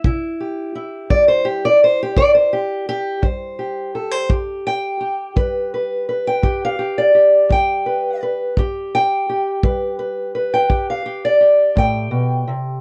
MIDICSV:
0, 0, Header, 1, 3, 480
1, 0, Start_track
1, 0, Tempo, 711744
1, 31, Time_signature, 12, 3, 24, 8
1, 8638, End_track
2, 0, Start_track
2, 0, Title_t, "Steel-string acoustic guitar"
2, 0, Program_c, 0, 25
2, 31, Note_on_c, 0, 48, 79
2, 37, Note_on_c, 0, 64, 49
2, 273, Note_on_c, 0, 67, 40
2, 461, Note_off_c, 0, 48, 0
2, 500, Note_off_c, 0, 64, 0
2, 508, Note_on_c, 0, 64, 49
2, 742, Note_on_c, 0, 55, 60
2, 745, Note_on_c, 0, 74, 99
2, 861, Note_off_c, 0, 74, 0
2, 864, Note_on_c, 0, 72, 91
2, 974, Note_off_c, 0, 67, 0
2, 977, Note_on_c, 0, 67, 79
2, 986, Note_off_c, 0, 72, 0
2, 1102, Note_off_c, 0, 67, 0
2, 1113, Note_on_c, 0, 74, 108
2, 1176, Note_off_c, 0, 55, 0
2, 1230, Note_off_c, 0, 74, 0
2, 1240, Note_on_c, 0, 72, 91
2, 1353, Note_off_c, 0, 72, 0
2, 1366, Note_on_c, 0, 67, 88
2, 1457, Note_on_c, 0, 48, 74
2, 1466, Note_on_c, 0, 74, 111
2, 1476, Note_off_c, 0, 67, 0
2, 1580, Note_off_c, 0, 74, 0
2, 1583, Note_on_c, 0, 72, 81
2, 1704, Note_off_c, 0, 72, 0
2, 1705, Note_on_c, 0, 67, 79
2, 1893, Note_off_c, 0, 48, 0
2, 1939, Note_off_c, 0, 67, 0
2, 1947, Note_on_c, 0, 67, 113
2, 2173, Note_on_c, 0, 55, 61
2, 2180, Note_on_c, 0, 72, 46
2, 2186, Note_off_c, 0, 67, 0
2, 2420, Note_on_c, 0, 67, 44
2, 2610, Note_off_c, 0, 55, 0
2, 2661, Note_off_c, 0, 72, 0
2, 2663, Note_on_c, 0, 69, 48
2, 2775, Note_off_c, 0, 69, 0
2, 2775, Note_on_c, 0, 72, 39
2, 2875, Note_off_c, 0, 64, 0
2, 2894, Note_on_c, 0, 43, 71
2, 2899, Note_off_c, 0, 67, 0
2, 2899, Note_off_c, 0, 72, 0
2, 2899, Note_on_c, 0, 67, 48
2, 3147, Note_on_c, 0, 79, 102
2, 3330, Note_off_c, 0, 43, 0
2, 3374, Note_off_c, 0, 67, 0
2, 3376, Note_on_c, 0, 67, 48
2, 3614, Note_on_c, 0, 55, 63
2, 3621, Note_on_c, 0, 71, 47
2, 3867, Note_off_c, 0, 71, 0
2, 3870, Note_on_c, 0, 71, 51
2, 4051, Note_off_c, 0, 55, 0
2, 4103, Note_off_c, 0, 71, 0
2, 4105, Note_on_c, 0, 71, 48
2, 4222, Note_off_c, 0, 79, 0
2, 4230, Note_on_c, 0, 79, 89
2, 4332, Note_on_c, 0, 43, 68
2, 4339, Note_off_c, 0, 67, 0
2, 4342, Note_on_c, 0, 67, 49
2, 4467, Note_off_c, 0, 79, 0
2, 4482, Note_on_c, 0, 77, 94
2, 4570, Note_off_c, 0, 67, 0
2, 4578, Note_on_c, 0, 67, 48
2, 4704, Note_off_c, 0, 71, 0
2, 4707, Note_on_c, 0, 74, 76
2, 4713, Note_off_c, 0, 77, 0
2, 4770, Note_off_c, 0, 43, 0
2, 4812, Note_off_c, 0, 67, 0
2, 4820, Note_on_c, 0, 67, 44
2, 5053, Note_on_c, 0, 55, 61
2, 5066, Note_off_c, 0, 74, 0
2, 5073, Note_on_c, 0, 79, 91
2, 5301, Note_on_c, 0, 71, 46
2, 5491, Note_off_c, 0, 55, 0
2, 5540, Note_off_c, 0, 71, 0
2, 5548, Note_on_c, 0, 71, 52
2, 5549, Note_off_c, 0, 79, 0
2, 5754, Note_off_c, 0, 67, 0
2, 5757, Note_off_c, 0, 71, 0
2, 5787, Note_on_c, 0, 43, 72
2, 5792, Note_on_c, 0, 67, 49
2, 6034, Note_on_c, 0, 79, 103
2, 6218, Note_off_c, 0, 43, 0
2, 6260, Note_off_c, 0, 67, 0
2, 6268, Note_on_c, 0, 67, 43
2, 6500, Note_on_c, 0, 55, 65
2, 6501, Note_on_c, 0, 71, 43
2, 6729, Note_off_c, 0, 71, 0
2, 6737, Note_on_c, 0, 71, 47
2, 6935, Note_off_c, 0, 55, 0
2, 6971, Note_off_c, 0, 71, 0
2, 6979, Note_on_c, 0, 71, 47
2, 7098, Note_off_c, 0, 79, 0
2, 7106, Note_on_c, 0, 79, 81
2, 7207, Note_off_c, 0, 67, 0
2, 7212, Note_on_c, 0, 43, 69
2, 7215, Note_on_c, 0, 67, 48
2, 7346, Note_off_c, 0, 79, 0
2, 7350, Note_on_c, 0, 77, 77
2, 7449, Note_off_c, 0, 67, 0
2, 7457, Note_on_c, 0, 67, 49
2, 7583, Note_off_c, 0, 71, 0
2, 7585, Note_on_c, 0, 74, 79
2, 7589, Note_off_c, 0, 77, 0
2, 7652, Note_off_c, 0, 43, 0
2, 7684, Note_off_c, 0, 67, 0
2, 7692, Note_on_c, 0, 67, 42
2, 7927, Note_on_c, 0, 45, 59
2, 7946, Note_off_c, 0, 74, 0
2, 7946, Note_on_c, 0, 79, 100
2, 8164, Note_off_c, 0, 45, 0
2, 8167, Note_on_c, 0, 47, 57
2, 8411, Note_off_c, 0, 47, 0
2, 8413, Note_on_c, 0, 48, 62
2, 8427, Note_off_c, 0, 79, 0
2, 8632, Note_off_c, 0, 67, 0
2, 8638, Note_off_c, 0, 48, 0
2, 8638, End_track
3, 0, Start_track
3, 0, Title_t, "Drums"
3, 29, Note_on_c, 9, 36, 66
3, 97, Note_off_c, 9, 36, 0
3, 745, Note_on_c, 9, 36, 69
3, 812, Note_off_c, 9, 36, 0
3, 1461, Note_on_c, 9, 36, 72
3, 1528, Note_off_c, 9, 36, 0
3, 2178, Note_on_c, 9, 36, 62
3, 2245, Note_off_c, 9, 36, 0
3, 2898, Note_on_c, 9, 36, 69
3, 2966, Note_off_c, 9, 36, 0
3, 3619, Note_on_c, 9, 36, 66
3, 3687, Note_off_c, 9, 36, 0
3, 4339, Note_on_c, 9, 36, 63
3, 4406, Note_off_c, 9, 36, 0
3, 5061, Note_on_c, 9, 36, 58
3, 5129, Note_off_c, 9, 36, 0
3, 5780, Note_on_c, 9, 36, 63
3, 5847, Note_off_c, 9, 36, 0
3, 6497, Note_on_c, 9, 36, 66
3, 6564, Note_off_c, 9, 36, 0
3, 7215, Note_on_c, 9, 36, 61
3, 7282, Note_off_c, 9, 36, 0
3, 7936, Note_on_c, 9, 36, 62
3, 8003, Note_off_c, 9, 36, 0
3, 8638, End_track
0, 0, End_of_file